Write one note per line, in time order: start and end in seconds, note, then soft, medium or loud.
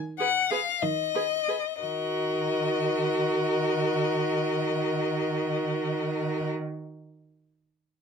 0.00 0.65 D#3 soft
0.19 0.28 G#4 soft
0.19 0.29 B4 soft
0.19 0.52 F#5 medium
0.50 0.59 G#4 soft
0.50 0.60 B4 soft
0.50 0.84 F5 medium
0.82 1.64 D#3 soft
0.82 1.82 D#5 medium
1.15 1.24 G#4 soft
1.15 1.23 B4 soft
1.48 1.56 G#4 soft
1.48 1.57 B4 soft
1.81 6.49 D#3 soft
1.81 6.48 F#4 soft
1.81 6.48 A#4 soft
1.81 6.49 D#5 soft